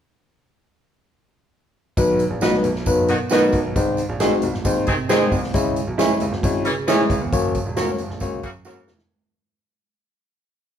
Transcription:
1.97 grand piano B1, tine electric piano F#3 B3 D#4 B4, kick, closed hi-hat, tambourine
2.19 closed hi-hat, tambourine
2.30 grand piano A#1
2.41 tine electric piano F#3 B3 D#4 B4, clean electric guitar F#4 B4 D#5, snare, closed hi-hat, tambourine
2.53 snare
2.64 grand piano B1, closed hi-hat, tambourine
2.76 snare
2.86 grand piano F#1, tine electric piano F#3 B3 D#4 B4, kick, closed hi-hat, tambourine
3.08 grand piano B2, horn section D#3 B3 F#4, closed hi-hat, tambourine
3.30 horn section D#3 B3 F#4, tine electric piano F#3 B3 D#4 B4, clean electric guitar F#4 B4 D#5, snare, closed hi-hat, tambourine
3.52 grand piano B1, kick, closed hi-hat, tambourine
3.76 grand piano C2, tine electric piano G#3 C4 D#4 C5, kick, closed hi-hat, tambourine
3.97 closed hi-hat, tambourine
4.09 grand piano A#1
4.20 tine electric piano G#3 C4 D#4 F#4, clean electric guitar G#4 C5 D#5, snare, closed hi-hat, tambourine
4.42 grand piano C2, closed hi-hat, tambourine
4.54 grand piano G#1, snare
4.65 grand piano D#2, tine electric piano G#3 C4 D#4 C5, kick, closed hi-hat, tambourine
4.87 grand piano C3, horn section D#3 C4 G#4, kick, closed hi-hat, tambourine
5.08 horn section D#3 C4 G#4, tine electric piano G#3 C4 D#4 C5, clean electric guitar G#4 C5 D#5, snare, closed hi-hat, tambourine
5.31 grand piano C2, kick, open hi-hat, tambourine
5.43 snare
5.54 grand piano C#2, tine electric piano G#3 C#4 E4 C#5, kick, closed hi-hat, tambourine
5.76 closed hi-hat, tambourine
5.87 grand piano B1
5.98 tine electric piano G#3 C#4 E4 C#5, clean electric guitar E4 G#4 C#5, snare, closed hi-hat, tambourine
6.20 grand piano C#2, closed hi-hat, tambourine
6.32 grand piano G#1, snare
6.43 grand piano G#1, tine electric piano G#3 C#4 E4 C#5, kick, closed hi-hat, tambourine
6.65 grand piano C#3, horn section E3 C#4 G#4, closed hi-hat, tambourine
6.87 horn section E3 C#4 G#4, tine electric piano G#3 C#4 E4 C#5, clean electric guitar E4 G#4 C#5, snare, closed hi-hat, tambourine
7.10 grand piano C#2, kick, closed hi-hat, tambourine
7.21 grand piano E2
7.32 grand piano F#1, tine electric piano A#3 C#4 F#4 C#5, kick, closed hi-hat, tambourine
7.55 kick, closed hi-hat, tambourine
7.66 grand piano E1
7.76 tine electric piano A#3 C#4 F#4 C#5, clean electric guitar F#4 A#4 C#5, snare, closed hi-hat, tambourine
7.98 grand piano F#1, closed hi-hat, tambourine
8.10 grand piano A#1, snare
8.20 grand piano C#2, tine electric piano A#3 C#4 F#4 C#5, kick, closed hi-hat, tambourine
8.42 grand piano F#2, horn section C#3 A#3 F#4, kick, closed hi-hat, tambourine
8.65 horn section C#3 A#3 F#4, tine electric piano A#3 C#4 F#4 C#5, clean electric guitar F#4 A#4 C#5, snare, tambourine
8.88 grand piano F1, snare, tambourine
8.98 snare

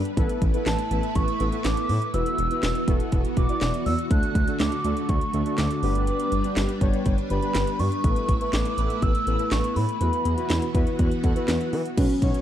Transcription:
Already playing: string machine G3 D4 B4
0.05 closed hi-hat
0.17 analog synth bass A1, string machine A3 E4 B4, analog polysynth B3 E4 A4 B4, kick, closed hi-hat
0.29 closed hi-hat
0.42 analog synth bass A1, kick, closed hi-hat
0.54 analog polysynth B3 E4 A4 B4, closed hi-hat
0.66 analog synth bass A1, soft synth lead A5, snare, clap, closed hi-hat
0.79 closed hi-hat
0.91 analog synth bass A1, analog polysynth B3 E4 A4 B4, closed hi-hat
1.03 closed hi-hat
1.15 analog synth bass A1, soft synth lead C#6, kick, closed hi-hat
1.28 closed hi-hat
1.40 analog synth bass A1, analog polysynth B3 E4 A4 B4, closed hi-hat
1.52 analog polysynth B3 E4 A4 B4, closed hi-hat
1.64 analog synth bass A1, soft synth lead D6, snare, clap, closed hi-hat
1.77 closed hi-hat
1.89 analog synth bass A2, open hi-hat
2.02 closed hi-hat
2.14 analog synth bass E1, string machine E3 B3 F#4, analog polysynth B3 E4 F#4 B4, soft synth lead E6, closed hi-hat
2.26 closed hi-hat
2.38 analog synth bass E1, closed hi-hat
2.51 analog polysynth B3 E4 F#4 B4, closed hi-hat
2.63 analog synth bass E1, snare, clap, closed hi-hat
2.75 closed hi-hat
2.88 analog synth bass E1, analog polysynth B3 E4 F#4 A4, kick, closed hi-hat
3.00 closed hi-hat
3.12 analog synth bass E1, kick, closed hi-hat
3.25 closed hi-hat
3.37 analog synth bass E1, analog polysynth B3 E4 F#4 B4, soft synth lead D6, kick, closed hi-hat
3.49 analog polysynth B3 E4 F#4 D5, closed hi-hat
3.61 analog synth bass E1, snare, clap, closed hi-hat
3.74 closed hi-hat
3.86 analog synth bass E2, soft synth lead E6, open hi-hat
3.99 closed hi-hat
4.11 analog synth bass D2, string machine D3 A3, analog polysynth A3 D4 F#4 A4, soft synth lead F#6, kick, closed hi-hat
4.23 closed hi-hat
4.35 analog synth bass D2, kick, closed hi-hat
4.47 analog polysynth A3 D4 F#4 A4, closed hi-hat
4.60 analog synth bass D2, soft synth lead D6, snare, clap, closed hi-hat
4.72 closed hi-hat
4.84 analog synth bass D2, analog polysynth A3 D4 F#4 A4, closed hi-hat
4.97 closed hi-hat
5.09 analog synth bass D2, soft synth lead C#6, kick, closed hi-hat
5.21 closed hi-hat
5.33 analog synth bass D2, analog polysynth A3 D4 F#4 A4, closed hi-hat
5.46 analog polysynth A3 D4 F#4 A4, closed hi-hat
5.58 analog synth bass D2, soft synth lead D6, snare, clap, closed hi-hat
5.71 closed hi-hat
5.83 analog synth bass G1, string machine G3 D4 B4, analog polysynth B3 D4 G4 B4, open hi-hat
5.95 closed hi-hat
6.07 soft synth lead D6, closed hi-hat
6.20 closed hi-hat
6.32 analog synth bass G1, closed hi-hat
6.44 analog polysynth B3 D4 G4 B4, closed hi-hat
6.56 analog synth bass G1, snare, clap, closed hi-hat
6.69 closed hi-hat
6.81 analog synth bass G1, analog polysynth B3 D4 G4 C#5, kick, closed hi-hat
6.93 closed hi-hat
7.06 analog synth bass G1, kick, closed hi-hat
7.18 closed hi-hat
7.30 analog synth bass G1, analog polysynth B3 D4 G4 B4, soft synth lead B5, closed hi-hat
7.43 analog polysynth B3 D4 G4 B4, closed hi-hat
7.55 analog synth bass G1, snare, clap, closed hi-hat
7.67 closed hi-hat
7.79 analog synth bass G2, soft synth lead C#6, open hi-hat
7.92 closed hi-hat
8.04 analog synth bass A1, string machine A3 E4, analog polysynth B3 E4 A4 B4, kick, closed hi-hat
8.16 closed hi-hat
8.29 analog synth bass A1, kick, closed hi-hat
8.41 analog polysynth B3 E4 A4 B4, closed hi-hat
8.53 analog synth bass A1, soft synth lead D6, snare, clap, closed hi-hat
8.65 closed hi-hat
8.78 analog synth bass A1, analog polysynth B3 E4 A4 B4, closed hi-hat
8.90 closed hi-hat
9.02 analog synth bass A1, soft synth lead E6, kick, closed hi-hat
9.15 closed hi-hat
9.27 analog synth bass A1, analog polysynth B3 E4 A4 B4, closed hi-hat
9.39 analog polysynth B3 E4 A4 B4, closed hi-hat
9.51 analog synth bass A1, soft synth lead C#6, snare, clap, closed hi-hat
9.64 closed hi-hat
9.76 analog synth bass A2, soft synth lead B5, open hi-hat
9.89 closed hi-hat
10.01 analog synth bass E2, string machine E3 B3 F#4, analog polysynth B3 E4 F#4 B4, closed hi-hat
10.13 closed hi-hat
10.25 analog synth bass E2, closed hi-hat
10.38 analog polysynth B3 E4 F#4 B4, closed hi-hat
10.50 analog synth bass E2, snare, clap, closed hi-hat
10.62 closed hi-hat
10.75 analog synth bass E2, analog polysynth B3 E4 F#4 B4, kick, closed hi-hat
10.87 closed hi-hat
10.99 analog synth bass E2, kick, closed hi-hat
11.11 closed hi-hat
11.24 analog synth bass E2, analog polysynth B3 E4 F#4 A4, kick, closed hi-hat
11.36 analog polysynth B3 E4 F#4 B4, closed hi-hat
11.48 analog synth bass E2, snare, clap, closed hi-hat
11.61 closed hi-hat
11.73 analog synth bass E3, open hi-hat
11.85 closed hi-hat
11.97 analog synth bass B1, analog polysynth F#3 B3 C#4 F#4 B4, string machine F#3 B3 C#4, soft synth lead C#4, kick, closed hi-hat, crash
12.10 closed hi-hat
12.22 analog synth bass B1, analog polysynth F#3 B3 C#4 F#4 C#5, kick, closed hi-hat
12.34 closed hi-hat

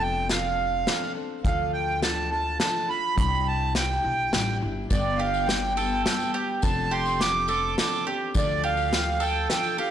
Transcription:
Already playing: upright bass F1, steel-string acoustic guitar F3 C4 D4 A4
0.02 accordion G5
0.29 steel-string acoustic guitar F3 C4 D4 A4, accordion F5, snare, closed hi-hat
0.87 steel-string acoustic guitar F3 C4 D4 A4, snare, closed hi-hat
1.15 steel-string acoustic guitar C4 D4 A4
1.44 upright bass D2, steel-string acoustic guitar D3 F3 D4 F4 A4, accordion F5, kick, closed hi-hat
1.73 accordion G5
2.01 steel-string acoustic guitar F3 D4 F4 A4, accordion A5, snare, closed hi-hat
2.30 steel-string acoustic guitar D4 F4 A4, accordion A5
2.59 steel-string acoustic guitar F3 D4 F4 A4, accordion A5, snare, closed hi-hat
2.88 steel-string acoustic guitar D4 F4 A4, accordion B5
3.16 upright bass C2, steel-string acoustic guitar C3 G3 D4 E4 G4, accordion B5, kick, closed hi-hat
3.47 accordion A5
3.75 steel-string acoustic guitar G3 D4 E4 G4, accordion G5, snare, closed hi-hat
4.02 upright bass B1, steel-string acoustic guitar D4 E4 G4
4.32 upright bass A1, steel-string acoustic guitar G3 D4 E4 G4, snare, closed hi-hat
4.61 upright bass G1, steel-string acoustic guitar D4 E4 G4
4.90 upright bass G1, steel-string acoustic guitar G2 D3 G3 B3 D4 G4, accordion D5, kick, closed hi-hat, tambourine
5.17 mandolin G4, accordion F5
5.34 tambourine
5.46 steel-string acoustic guitar G3 B3 D4, accordion G5, snare, closed hi-hat
5.50 steel-string acoustic guitar G4
5.75 steel-string acoustic guitar G3 B3 D4 G4, mandolin A4, accordion G5, tambourine
6.04 steel-string acoustic guitar G3 B3 D4 G4, accordion G5, snare, closed hi-hat
6.20 tambourine
6.34 mandolin G4
6.62 upright bass F1, steel-string acoustic guitar F3 C4 D4 A4, accordion A5, kick, closed hi-hat, tambourine
6.91 mandolin G4, accordion C6
7.05 tambourine
7.19 steel-string acoustic guitar F3 C4 D4 A4, accordion D6, snare, closed hi-hat
7.47 steel-string acoustic guitar C4 D4 A4, mandolin A4, accordion D6, tambourine
7.76 steel-string acoustic guitar F3 C4 D4 A4, accordion D6, snare, closed hi-hat
7.91 tambourine
8.05 steel-string acoustic guitar C4 D4 A4, mandolin G4
8.34 upright bass D2, steel-string acoustic guitar D3 F3 D4 F4 A4, accordion D5, kick, closed hi-hat, tambourine
8.64 mandolin G4, accordion F5
8.77 tambourine
8.91 steel-string acoustic guitar F3 D4 F4 A4, snare, closed hi-hat
9.20 mandolin A4, accordion G5, tambourine
9.50 steel-string acoustic guitar F3 D4 F4 A4, accordion G5, snare, closed hi-hat
9.64 tambourine
9.78 steel-string acoustic guitar D4 F4 A4, mandolin G4, accordion F5

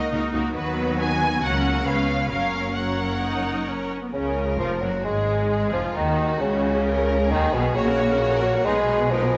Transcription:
Already playing: french horn section A#3 D#4, viola section D#4, violin section F#4 A#4 D#5
0.11 double bass section C#2, cello section C#3, viola section A#3 D#4, violin section F#4 A#4
0.32 double bass section C#2, cello section C#3, viola section A#3 D#4, violin section F#4 A#4
0.54 double bass section D#2, cello section D#3, viola section F#3 B3, french horn section B3, violin section F#4 B4
0.99 violin section G#5
1.42 double bass section C#2, cello section C#3, viola section F#3 C#4, french horn section A#3 C#4, violin section F#4 A#4 F#5
1.85 double bass section C#2, cello section C#3, viola section G#3 C#4, french horn section B3, violin section B4 C#5 F5
2.29 double bass section F#1, cello section F#2, viola section F#3 C#4, french horn section A#3, violin section A#4 C#5 F5
2.74 viola section F#3, violin section A#4 C#5 F#5
3.21 viola section D#4
3.67 viola section C#4
4.02 viola section B3
4.13 double bass section C#2, cello section C#2, viola section C#3, bassoon C#3, violin section C#4 A#4
4.59 double bass section F1, cello section F2, bassoon F3, viola section F3, violin section F4
4.81 double bass section F#1, cello section F#2, viola section F#3, bassoon F#3, violin section F#4
5.04 double bass section G#1, cello section G#2, viola section G#3, bassoon G#3, violin section G#3 G#4
5.51 violin section G#4
5.72 double bass section F1, cello section F2, viola section F3, bassoon F3, violin section F4
5.95 cello section D#2, double bass section D#2, viola section D#3, bassoon D#3, violin section D#4 F#4
6.41 cello section C#2, double bass section C#2, viola section C#3, bassoon C#3, violin section C#4
6.87 violin section A#4
7.31 double bass section D#2, cello section D#2, viola section D#3, bassoon D#3, violin section D#4 G#4
7.53 double bass section B1, bassoon B2, cello section B2, violin section B3, viola section B3
7.75 double bass section A#1, cello section A#2, bassoon C#3, viola section A#3 F#4, violin section F#4 C#5
7.88 viola section C#4 A#4, violin section A#4 F#5
7.99 viola section A#3 F#4, violin section C#5
8.11 viola section C#4 A#4, violin section A#4 F#5
8.21 viola section A#3 F#4, violin section C#5
8.32 viola section C#4 A#4, violin section A#4 F#5
8.42 bassoon F#3, viola section A#3 F#4, violin section C#5
8.54 viola section C#4 A#4, violin section A#4 F#5
8.65 double bass section B1, cello section B2, viola section G#3 D#4, bassoon G#3, violin section G#4 B4 D#5
8.76 viola section B3, violin section G#4 B4
8.88 viola section G#3 D#4, violin section B4 D#5
8.99 viola section B3, violin section G#4 B4
9.11 bassoon F3, viola section G#3 D#4, violin section A#4 B4 D#5
9.24 viola section B3, violin section G#4 B4
9.34 violin section B4 D#5

